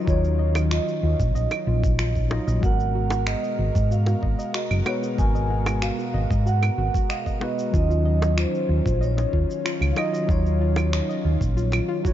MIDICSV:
0, 0, Header, 1, 7, 480
1, 0, Start_track
1, 0, Tempo, 638298
1, 56, Time_signature, 4, 2, 24, 8
1, 9123, End_track
2, 0, Start_track
2, 0, Title_t, "Vibraphone"
2, 0, Program_c, 0, 11
2, 14, Note_on_c, 0, 75, 79
2, 60, Note_on_c, 0, 73, 98
2, 61, Note_off_c, 0, 75, 0
2, 508, Note_off_c, 0, 73, 0
2, 539, Note_on_c, 0, 75, 103
2, 1707, Note_off_c, 0, 75, 0
2, 1987, Note_on_c, 0, 78, 95
2, 2468, Note_on_c, 0, 75, 102
2, 2476, Note_off_c, 0, 78, 0
2, 2946, Note_on_c, 0, 77, 97
2, 2956, Note_off_c, 0, 75, 0
2, 3423, Note_on_c, 0, 75, 95
2, 3436, Note_off_c, 0, 77, 0
2, 3529, Note_off_c, 0, 75, 0
2, 3660, Note_on_c, 0, 73, 91
2, 3767, Note_off_c, 0, 73, 0
2, 3902, Note_on_c, 0, 80, 109
2, 4383, Note_on_c, 0, 77, 106
2, 4393, Note_off_c, 0, 80, 0
2, 4865, Note_on_c, 0, 78, 103
2, 4874, Note_off_c, 0, 77, 0
2, 5344, Note_on_c, 0, 77, 98
2, 5355, Note_off_c, 0, 78, 0
2, 5587, Note_off_c, 0, 77, 0
2, 5587, Note_on_c, 0, 75, 89
2, 5823, Note_off_c, 0, 75, 0
2, 5832, Note_on_c, 0, 75, 101
2, 6274, Note_off_c, 0, 75, 0
2, 6310, Note_on_c, 0, 72, 95
2, 6793, Note_on_c, 0, 73, 92
2, 6797, Note_off_c, 0, 72, 0
2, 7459, Note_on_c, 0, 77, 67
2, 7473, Note_off_c, 0, 73, 0
2, 7503, Note_off_c, 0, 77, 0
2, 7513, Note_on_c, 0, 75, 89
2, 7728, Note_off_c, 0, 75, 0
2, 7751, Note_on_c, 0, 73, 86
2, 9123, Note_off_c, 0, 73, 0
2, 9123, End_track
3, 0, Start_track
3, 0, Title_t, "Synth arpeggio sound"
3, 0, Program_c, 1, 84
3, 52, Note_on_c, 1, 65, 85
3, 121, Note_off_c, 1, 65, 0
3, 291, Note_on_c, 1, 75, 80
3, 408, Note_off_c, 1, 75, 0
3, 417, Note_on_c, 1, 75, 78
3, 523, Note_off_c, 1, 75, 0
3, 535, Note_on_c, 1, 65, 76
3, 653, Note_off_c, 1, 65, 0
3, 776, Note_on_c, 1, 65, 73
3, 842, Note_off_c, 1, 65, 0
3, 1015, Note_on_c, 1, 75, 74
3, 1133, Note_off_c, 1, 75, 0
3, 1141, Note_on_c, 1, 75, 72
3, 1245, Note_off_c, 1, 75, 0
3, 1255, Note_on_c, 1, 65, 82
3, 1373, Note_off_c, 1, 65, 0
3, 1497, Note_on_c, 1, 65, 86
3, 1563, Note_off_c, 1, 65, 0
3, 1735, Note_on_c, 1, 75, 74
3, 1849, Note_off_c, 1, 75, 0
3, 1858, Note_on_c, 1, 75, 73
3, 1964, Note_off_c, 1, 75, 0
3, 1976, Note_on_c, 1, 66, 82
3, 2093, Note_off_c, 1, 66, 0
3, 2218, Note_on_c, 1, 66, 81
3, 2284, Note_off_c, 1, 66, 0
3, 2342, Note_on_c, 1, 66, 74
3, 2452, Note_off_c, 1, 66, 0
3, 2459, Note_on_c, 1, 75, 82
3, 2570, Note_off_c, 1, 75, 0
3, 2579, Note_on_c, 1, 75, 76
3, 2684, Note_off_c, 1, 75, 0
3, 2696, Note_on_c, 1, 66, 78
3, 2813, Note_off_c, 1, 66, 0
3, 2939, Note_on_c, 1, 66, 76
3, 3004, Note_off_c, 1, 66, 0
3, 3057, Note_on_c, 1, 66, 73
3, 3169, Note_off_c, 1, 66, 0
3, 3176, Note_on_c, 1, 75, 77
3, 3290, Note_off_c, 1, 75, 0
3, 3299, Note_on_c, 1, 75, 79
3, 3404, Note_off_c, 1, 75, 0
3, 3416, Note_on_c, 1, 66, 80
3, 3533, Note_off_c, 1, 66, 0
3, 3656, Note_on_c, 1, 66, 69
3, 3723, Note_off_c, 1, 66, 0
3, 3780, Note_on_c, 1, 66, 77
3, 3890, Note_off_c, 1, 66, 0
3, 3898, Note_on_c, 1, 75, 88
3, 4014, Note_off_c, 1, 75, 0
3, 4021, Note_on_c, 1, 75, 79
3, 4125, Note_off_c, 1, 75, 0
3, 4138, Note_on_c, 1, 66, 82
3, 4254, Note_off_c, 1, 66, 0
3, 4376, Note_on_c, 1, 66, 77
3, 4443, Note_off_c, 1, 66, 0
3, 4501, Note_on_c, 1, 66, 81
3, 4611, Note_off_c, 1, 66, 0
3, 4616, Note_on_c, 1, 75, 77
3, 4730, Note_off_c, 1, 75, 0
3, 4739, Note_on_c, 1, 75, 78
3, 4844, Note_off_c, 1, 75, 0
3, 4856, Note_on_c, 1, 66, 78
3, 4973, Note_off_c, 1, 66, 0
3, 5097, Note_on_c, 1, 66, 81
3, 5163, Note_off_c, 1, 66, 0
3, 5219, Note_on_c, 1, 66, 74
3, 5330, Note_off_c, 1, 66, 0
3, 5334, Note_on_c, 1, 75, 88
3, 5450, Note_off_c, 1, 75, 0
3, 5459, Note_on_c, 1, 75, 76
3, 5564, Note_off_c, 1, 75, 0
3, 5575, Note_on_c, 1, 66, 73
3, 5693, Note_off_c, 1, 66, 0
3, 5817, Note_on_c, 1, 65, 88
3, 5883, Note_off_c, 1, 65, 0
3, 5938, Note_on_c, 1, 65, 76
3, 6050, Note_off_c, 1, 65, 0
3, 6055, Note_on_c, 1, 75, 82
3, 6170, Note_off_c, 1, 75, 0
3, 6179, Note_on_c, 1, 75, 76
3, 6284, Note_off_c, 1, 75, 0
3, 6293, Note_on_c, 1, 65, 82
3, 6412, Note_off_c, 1, 65, 0
3, 6533, Note_on_c, 1, 65, 76
3, 6601, Note_off_c, 1, 65, 0
3, 6656, Note_on_c, 1, 65, 80
3, 6769, Note_off_c, 1, 65, 0
3, 6774, Note_on_c, 1, 75, 81
3, 6889, Note_off_c, 1, 75, 0
3, 6898, Note_on_c, 1, 75, 72
3, 7004, Note_off_c, 1, 75, 0
3, 7015, Note_on_c, 1, 65, 76
3, 7132, Note_off_c, 1, 65, 0
3, 7255, Note_on_c, 1, 65, 88
3, 7322, Note_off_c, 1, 65, 0
3, 7375, Note_on_c, 1, 65, 73
3, 7488, Note_off_c, 1, 65, 0
3, 7493, Note_on_c, 1, 75, 75
3, 7611, Note_off_c, 1, 75, 0
3, 7619, Note_on_c, 1, 75, 78
3, 7724, Note_off_c, 1, 75, 0
3, 7735, Note_on_c, 1, 65, 91
3, 7852, Note_off_c, 1, 65, 0
3, 7978, Note_on_c, 1, 65, 79
3, 8044, Note_off_c, 1, 65, 0
3, 8100, Note_on_c, 1, 65, 73
3, 8210, Note_off_c, 1, 65, 0
3, 8216, Note_on_c, 1, 75, 83
3, 8331, Note_off_c, 1, 75, 0
3, 8340, Note_on_c, 1, 75, 78
3, 8445, Note_off_c, 1, 75, 0
3, 8458, Note_on_c, 1, 65, 74
3, 8574, Note_off_c, 1, 65, 0
3, 8697, Note_on_c, 1, 65, 76
3, 8763, Note_off_c, 1, 65, 0
3, 8821, Note_on_c, 1, 65, 77
3, 8928, Note_off_c, 1, 65, 0
3, 8937, Note_on_c, 1, 65, 105
3, 9047, Note_off_c, 1, 65, 0
3, 9059, Note_on_c, 1, 66, 105
3, 9122, Note_off_c, 1, 66, 0
3, 9123, End_track
4, 0, Start_track
4, 0, Title_t, "Tine electric piano"
4, 0, Program_c, 2, 4
4, 0, Control_c, 2, 64, 127
4, 0, Note_on_c, 2, 54, 87
4, 0, Note_on_c, 2, 63, 81
4, 0, Note_on_c, 2, 65, 84
4, 0, Note_on_c, 2, 75, 94
4, 36, Note_off_c, 2, 54, 0
4, 36, Note_on_c, 2, 54, 82
4, 51, Note_off_c, 2, 63, 0
4, 51, Note_on_c, 2, 63, 77
4, 63, Note_off_c, 2, 65, 0
4, 63, Note_on_c, 2, 65, 75
4, 77, Note_on_c, 2, 73, 89
4, 1218, Note_off_c, 2, 54, 0
4, 1226, Note_off_c, 2, 63, 0
4, 1232, Note_off_c, 2, 65, 0
4, 1239, Note_off_c, 2, 73, 0
4, 1727, Note_on_c, 2, 54, 90
4, 1735, Note_on_c, 2, 63, 82
4, 1742, Note_on_c, 2, 65, 81
4, 1748, Note_off_c, 2, 75, 0
4, 1748, Note_on_c, 2, 75, 92
4, 1943, Note_off_c, 2, 54, 0
4, 1948, Note_off_c, 2, 63, 0
4, 1951, Note_off_c, 2, 65, 0
4, 1954, Note_off_c, 2, 75, 0
4, 1958, Note_on_c, 2, 56, 83
4, 1970, Note_on_c, 2, 59, 70
4, 1984, Note_on_c, 2, 66, 72
4, 1987, Control_c, 2, 64, 0
4, 1998, Note_on_c, 2, 70, 92
4, 2099, Control_c, 2, 64, 127
4, 3139, Note_off_c, 2, 56, 0
4, 3145, Note_off_c, 2, 59, 0
4, 3152, Note_off_c, 2, 66, 0
4, 3159, Note_off_c, 2, 70, 0
4, 3649, Note_on_c, 2, 56, 91
4, 3654, Note_on_c, 2, 59, 83
4, 3663, Note_on_c, 2, 66, 81
4, 3669, Note_on_c, 2, 71, 103
4, 3865, Note_off_c, 2, 56, 0
4, 3867, Note_off_c, 2, 59, 0
4, 3871, Note_off_c, 2, 66, 0
4, 3874, Note_off_c, 2, 71, 0
4, 3877, Note_on_c, 2, 56, 81
4, 3892, Note_on_c, 2, 59, 82
4, 3905, Note_on_c, 2, 66, 81
4, 3918, Note_on_c, 2, 70, 92
4, 5059, Note_off_c, 2, 56, 0
4, 5066, Note_off_c, 2, 59, 0
4, 5072, Note_off_c, 2, 66, 0
4, 5079, Note_off_c, 2, 70, 0
4, 5565, Note_on_c, 2, 56, 90
4, 5572, Note_on_c, 2, 59, 86
4, 5581, Note_on_c, 2, 66, 84
4, 5586, Note_on_c, 2, 71, 99
4, 5783, Note_off_c, 2, 56, 0
4, 5786, Note_off_c, 2, 59, 0
4, 5790, Note_off_c, 2, 66, 0
4, 5793, Note_off_c, 2, 71, 0
4, 5799, Note_on_c, 2, 54, 86
4, 5815, Note_on_c, 2, 63, 81
4, 5826, Control_c, 2, 64, 0
4, 5826, Note_on_c, 2, 65, 79
4, 5838, Note_on_c, 2, 61, 93
4, 5945, Control_c, 2, 64, 127
4, 6979, Note_off_c, 2, 54, 0
4, 6987, Note_off_c, 2, 63, 0
4, 6993, Note_off_c, 2, 65, 0
4, 6999, Note_off_c, 2, 61, 0
4, 7487, Note_on_c, 2, 54, 85
4, 7495, Note_on_c, 2, 63, 83
4, 7500, Note_on_c, 2, 65, 87
4, 7509, Note_on_c, 2, 75, 101
4, 7703, Note_off_c, 2, 54, 0
4, 7707, Note_off_c, 2, 63, 0
4, 7710, Note_off_c, 2, 65, 0
4, 7714, Note_off_c, 2, 75, 0
4, 7717, Note_on_c, 2, 54, 81
4, 7732, Note_on_c, 2, 63, 78
4, 7746, Note_on_c, 2, 65, 79
4, 7756, Note_on_c, 2, 73, 91
4, 8898, Note_off_c, 2, 54, 0
4, 8906, Note_off_c, 2, 63, 0
4, 8913, Note_off_c, 2, 65, 0
4, 8918, Note_off_c, 2, 73, 0
4, 9041, Note_on_c, 2, 54, 80
4, 9054, Note_on_c, 2, 63, 70
4, 9065, Note_on_c, 2, 65, 76
4, 9081, Note_on_c, 2, 73, 86
4, 9123, Note_off_c, 2, 54, 0
4, 9123, Note_off_c, 2, 63, 0
4, 9123, Note_off_c, 2, 65, 0
4, 9123, Note_off_c, 2, 73, 0
4, 9123, End_track
5, 0, Start_track
5, 0, Title_t, "Analog synth pad"
5, 0, Program_c, 3, 89
5, 0, Note_on_c, 3, 51, 77
5, 0, Note_on_c, 3, 54, 71
5, 0, Note_on_c, 3, 61, 68
5, 0, Note_on_c, 3, 65, 81
5, 1946, Note_off_c, 3, 54, 0
5, 1946, Note_off_c, 3, 61, 0
5, 1946, Note_off_c, 3, 65, 0
5, 1947, Note_off_c, 3, 51, 0
5, 1981, Note_on_c, 3, 56, 68
5, 1984, Note_on_c, 3, 47, 73
5, 1984, Note_on_c, 3, 70, 67
5, 1985, Note_on_c, 3, 66, 83
5, 5789, Note_off_c, 3, 56, 0
5, 5790, Note_off_c, 3, 47, 0
5, 5790, Note_off_c, 3, 70, 0
5, 5791, Note_off_c, 3, 66, 0
5, 5815, Note_on_c, 3, 61, 73
5, 5817, Note_on_c, 3, 51, 75
5, 5818, Note_on_c, 3, 65, 85
5, 5819, Note_on_c, 3, 54, 67
5, 9123, Note_off_c, 3, 51, 0
5, 9123, Note_off_c, 3, 54, 0
5, 9123, Note_off_c, 3, 61, 0
5, 9123, Note_off_c, 3, 65, 0
5, 9123, End_track
6, 0, Start_track
6, 0, Title_t, "Fingered electric bass"
6, 0, Program_c, 4, 33
6, 57, Note_on_c, 4, 39, 99
6, 587, Note_off_c, 4, 39, 0
6, 775, Note_on_c, 4, 39, 86
6, 853, Note_off_c, 4, 39, 0
6, 900, Note_on_c, 4, 34, 108
6, 1010, Note_off_c, 4, 34, 0
6, 1014, Note_on_c, 4, 34, 93
6, 1093, Note_off_c, 4, 34, 0
6, 1256, Note_on_c, 4, 34, 93
6, 1786, Note_off_c, 4, 34, 0
6, 1861, Note_on_c, 4, 34, 104
6, 1933, Note_off_c, 4, 34, 0
6, 1977, Note_on_c, 4, 32, 93
6, 2507, Note_off_c, 4, 32, 0
6, 2697, Note_on_c, 4, 32, 88
6, 2774, Note_off_c, 4, 32, 0
6, 2823, Note_on_c, 4, 44, 109
6, 3108, Note_off_c, 4, 44, 0
6, 3180, Note_on_c, 4, 32, 85
6, 3255, Note_off_c, 4, 32, 0
6, 3538, Note_on_c, 4, 30, 110
6, 3612, Note_off_c, 4, 30, 0
6, 3899, Note_on_c, 4, 32, 92
6, 4428, Note_off_c, 4, 32, 0
6, 4617, Note_on_c, 4, 32, 89
6, 4694, Note_off_c, 4, 32, 0
6, 4740, Note_on_c, 4, 44, 104
6, 5027, Note_off_c, 4, 44, 0
6, 5097, Note_on_c, 4, 32, 90
6, 5174, Note_off_c, 4, 32, 0
6, 5819, Note_on_c, 4, 39, 104
6, 6348, Note_off_c, 4, 39, 0
6, 6535, Note_on_c, 4, 39, 85
6, 6613, Note_off_c, 4, 39, 0
6, 6661, Note_on_c, 4, 34, 101
6, 6948, Note_off_c, 4, 34, 0
6, 7018, Note_on_c, 4, 39, 90
6, 7095, Note_off_c, 4, 39, 0
6, 7376, Note_on_c, 4, 37, 116
6, 7451, Note_off_c, 4, 37, 0
6, 7735, Note_on_c, 4, 39, 100
6, 8266, Note_off_c, 4, 39, 0
6, 8459, Note_on_c, 4, 39, 86
6, 8535, Note_off_c, 4, 39, 0
6, 8579, Note_on_c, 4, 34, 103
6, 8867, Note_off_c, 4, 34, 0
6, 9123, End_track
7, 0, Start_track
7, 0, Title_t, "Drums"
7, 57, Note_on_c, 9, 36, 122
7, 60, Note_on_c, 9, 82, 59
7, 132, Note_off_c, 9, 36, 0
7, 135, Note_off_c, 9, 82, 0
7, 183, Note_on_c, 9, 82, 36
7, 259, Note_off_c, 9, 82, 0
7, 415, Note_on_c, 9, 60, 94
7, 418, Note_on_c, 9, 75, 57
7, 422, Note_on_c, 9, 82, 72
7, 490, Note_off_c, 9, 60, 0
7, 493, Note_off_c, 9, 75, 0
7, 498, Note_off_c, 9, 82, 0
7, 536, Note_on_c, 9, 26, 104
7, 541, Note_on_c, 9, 82, 57
7, 611, Note_off_c, 9, 26, 0
7, 616, Note_off_c, 9, 82, 0
7, 663, Note_on_c, 9, 82, 34
7, 738, Note_off_c, 9, 82, 0
7, 900, Note_on_c, 9, 36, 116
7, 903, Note_on_c, 9, 82, 74
7, 975, Note_off_c, 9, 36, 0
7, 978, Note_off_c, 9, 82, 0
7, 1020, Note_on_c, 9, 82, 56
7, 1095, Note_off_c, 9, 82, 0
7, 1136, Note_on_c, 9, 60, 70
7, 1141, Note_on_c, 9, 75, 74
7, 1145, Note_on_c, 9, 82, 35
7, 1211, Note_off_c, 9, 60, 0
7, 1216, Note_off_c, 9, 75, 0
7, 1220, Note_off_c, 9, 82, 0
7, 1380, Note_on_c, 9, 36, 111
7, 1383, Note_on_c, 9, 82, 68
7, 1455, Note_off_c, 9, 36, 0
7, 1459, Note_off_c, 9, 82, 0
7, 1496, Note_on_c, 9, 26, 97
7, 1500, Note_on_c, 9, 82, 56
7, 1571, Note_off_c, 9, 26, 0
7, 1575, Note_off_c, 9, 82, 0
7, 1620, Note_on_c, 9, 36, 62
7, 1624, Note_on_c, 9, 82, 36
7, 1696, Note_off_c, 9, 36, 0
7, 1699, Note_off_c, 9, 82, 0
7, 1736, Note_on_c, 9, 60, 85
7, 1811, Note_off_c, 9, 60, 0
7, 1865, Note_on_c, 9, 82, 65
7, 1940, Note_off_c, 9, 82, 0
7, 1978, Note_on_c, 9, 36, 120
7, 1981, Note_on_c, 9, 82, 57
7, 2053, Note_off_c, 9, 36, 0
7, 2057, Note_off_c, 9, 82, 0
7, 2104, Note_on_c, 9, 82, 35
7, 2180, Note_off_c, 9, 82, 0
7, 2335, Note_on_c, 9, 60, 104
7, 2343, Note_on_c, 9, 82, 66
7, 2410, Note_off_c, 9, 60, 0
7, 2419, Note_off_c, 9, 82, 0
7, 2456, Note_on_c, 9, 26, 98
7, 2461, Note_on_c, 9, 82, 58
7, 2532, Note_off_c, 9, 26, 0
7, 2536, Note_off_c, 9, 82, 0
7, 2587, Note_on_c, 9, 82, 35
7, 2662, Note_off_c, 9, 82, 0
7, 2821, Note_on_c, 9, 36, 98
7, 2826, Note_on_c, 9, 82, 72
7, 2897, Note_off_c, 9, 36, 0
7, 2901, Note_off_c, 9, 82, 0
7, 2944, Note_on_c, 9, 82, 57
7, 3019, Note_off_c, 9, 82, 0
7, 3056, Note_on_c, 9, 60, 67
7, 3064, Note_on_c, 9, 82, 34
7, 3132, Note_off_c, 9, 60, 0
7, 3139, Note_off_c, 9, 82, 0
7, 3179, Note_on_c, 9, 36, 61
7, 3254, Note_off_c, 9, 36, 0
7, 3305, Note_on_c, 9, 82, 69
7, 3380, Note_off_c, 9, 82, 0
7, 3417, Note_on_c, 9, 26, 100
7, 3421, Note_on_c, 9, 82, 55
7, 3492, Note_off_c, 9, 26, 0
7, 3496, Note_off_c, 9, 82, 0
7, 3541, Note_on_c, 9, 75, 78
7, 3545, Note_on_c, 9, 82, 33
7, 3616, Note_off_c, 9, 75, 0
7, 3620, Note_off_c, 9, 82, 0
7, 3655, Note_on_c, 9, 60, 88
7, 3658, Note_on_c, 9, 75, 83
7, 3730, Note_off_c, 9, 60, 0
7, 3734, Note_off_c, 9, 75, 0
7, 3785, Note_on_c, 9, 82, 66
7, 3860, Note_off_c, 9, 82, 0
7, 3899, Note_on_c, 9, 36, 114
7, 3902, Note_on_c, 9, 82, 53
7, 3974, Note_off_c, 9, 36, 0
7, 3977, Note_off_c, 9, 82, 0
7, 4026, Note_on_c, 9, 82, 33
7, 4101, Note_off_c, 9, 82, 0
7, 4258, Note_on_c, 9, 60, 96
7, 4260, Note_on_c, 9, 75, 61
7, 4264, Note_on_c, 9, 82, 69
7, 4334, Note_off_c, 9, 60, 0
7, 4335, Note_off_c, 9, 75, 0
7, 4339, Note_off_c, 9, 82, 0
7, 4378, Note_on_c, 9, 26, 96
7, 4382, Note_on_c, 9, 82, 59
7, 4453, Note_off_c, 9, 26, 0
7, 4457, Note_off_c, 9, 82, 0
7, 4507, Note_on_c, 9, 82, 33
7, 4582, Note_off_c, 9, 82, 0
7, 4742, Note_on_c, 9, 36, 102
7, 4747, Note_on_c, 9, 82, 67
7, 4817, Note_off_c, 9, 36, 0
7, 4822, Note_off_c, 9, 82, 0
7, 4863, Note_on_c, 9, 82, 54
7, 4938, Note_off_c, 9, 82, 0
7, 4982, Note_on_c, 9, 75, 78
7, 4983, Note_on_c, 9, 60, 67
7, 4987, Note_on_c, 9, 82, 34
7, 5058, Note_off_c, 9, 60, 0
7, 5058, Note_off_c, 9, 75, 0
7, 5062, Note_off_c, 9, 82, 0
7, 5222, Note_on_c, 9, 36, 104
7, 5226, Note_on_c, 9, 82, 64
7, 5297, Note_off_c, 9, 36, 0
7, 5301, Note_off_c, 9, 82, 0
7, 5339, Note_on_c, 9, 26, 91
7, 5343, Note_on_c, 9, 82, 53
7, 5414, Note_off_c, 9, 26, 0
7, 5418, Note_off_c, 9, 82, 0
7, 5462, Note_on_c, 9, 36, 54
7, 5466, Note_on_c, 9, 82, 33
7, 5537, Note_off_c, 9, 36, 0
7, 5541, Note_off_c, 9, 82, 0
7, 5575, Note_on_c, 9, 60, 83
7, 5650, Note_off_c, 9, 60, 0
7, 5706, Note_on_c, 9, 82, 64
7, 5781, Note_off_c, 9, 82, 0
7, 5819, Note_on_c, 9, 36, 116
7, 5822, Note_on_c, 9, 82, 52
7, 5894, Note_off_c, 9, 36, 0
7, 5898, Note_off_c, 9, 82, 0
7, 5947, Note_on_c, 9, 82, 32
7, 6022, Note_off_c, 9, 82, 0
7, 6183, Note_on_c, 9, 60, 90
7, 6187, Note_on_c, 9, 82, 66
7, 6258, Note_off_c, 9, 60, 0
7, 6262, Note_off_c, 9, 82, 0
7, 6299, Note_on_c, 9, 26, 99
7, 6304, Note_on_c, 9, 82, 58
7, 6374, Note_off_c, 9, 26, 0
7, 6379, Note_off_c, 9, 82, 0
7, 6428, Note_on_c, 9, 82, 32
7, 6503, Note_off_c, 9, 82, 0
7, 6661, Note_on_c, 9, 36, 98
7, 6669, Note_on_c, 9, 82, 67
7, 6736, Note_off_c, 9, 36, 0
7, 6744, Note_off_c, 9, 82, 0
7, 6787, Note_on_c, 9, 82, 52
7, 6862, Note_off_c, 9, 82, 0
7, 6904, Note_on_c, 9, 60, 64
7, 6909, Note_on_c, 9, 82, 32
7, 6979, Note_off_c, 9, 60, 0
7, 6984, Note_off_c, 9, 82, 0
7, 7018, Note_on_c, 9, 36, 55
7, 7093, Note_off_c, 9, 36, 0
7, 7149, Note_on_c, 9, 82, 66
7, 7224, Note_off_c, 9, 82, 0
7, 7262, Note_on_c, 9, 26, 102
7, 7266, Note_on_c, 9, 82, 55
7, 7337, Note_off_c, 9, 26, 0
7, 7341, Note_off_c, 9, 82, 0
7, 7384, Note_on_c, 9, 75, 87
7, 7388, Note_on_c, 9, 82, 34
7, 7459, Note_off_c, 9, 75, 0
7, 7463, Note_off_c, 9, 82, 0
7, 7493, Note_on_c, 9, 60, 78
7, 7501, Note_on_c, 9, 75, 88
7, 7568, Note_off_c, 9, 60, 0
7, 7576, Note_off_c, 9, 75, 0
7, 7628, Note_on_c, 9, 82, 67
7, 7703, Note_off_c, 9, 82, 0
7, 7737, Note_on_c, 9, 36, 113
7, 7744, Note_on_c, 9, 82, 55
7, 7812, Note_off_c, 9, 36, 0
7, 7819, Note_off_c, 9, 82, 0
7, 7867, Note_on_c, 9, 82, 34
7, 7943, Note_off_c, 9, 82, 0
7, 8093, Note_on_c, 9, 60, 92
7, 8102, Note_on_c, 9, 75, 65
7, 8106, Note_on_c, 9, 82, 68
7, 8168, Note_off_c, 9, 60, 0
7, 8177, Note_off_c, 9, 75, 0
7, 8181, Note_off_c, 9, 82, 0
7, 8221, Note_on_c, 9, 26, 104
7, 8225, Note_on_c, 9, 82, 56
7, 8296, Note_off_c, 9, 26, 0
7, 8300, Note_off_c, 9, 82, 0
7, 8348, Note_on_c, 9, 82, 30
7, 8423, Note_off_c, 9, 82, 0
7, 8580, Note_on_c, 9, 36, 104
7, 8586, Note_on_c, 9, 82, 72
7, 8655, Note_off_c, 9, 36, 0
7, 8661, Note_off_c, 9, 82, 0
7, 8704, Note_on_c, 9, 82, 53
7, 8780, Note_off_c, 9, 82, 0
7, 8814, Note_on_c, 9, 60, 60
7, 8823, Note_on_c, 9, 26, 32
7, 8823, Note_on_c, 9, 75, 83
7, 8828, Note_on_c, 9, 82, 34
7, 8889, Note_off_c, 9, 60, 0
7, 8899, Note_off_c, 9, 26, 0
7, 8899, Note_off_c, 9, 75, 0
7, 8903, Note_off_c, 9, 82, 0
7, 9060, Note_on_c, 9, 36, 96
7, 9067, Note_on_c, 9, 82, 68
7, 9123, Note_off_c, 9, 36, 0
7, 9123, Note_off_c, 9, 82, 0
7, 9123, End_track
0, 0, End_of_file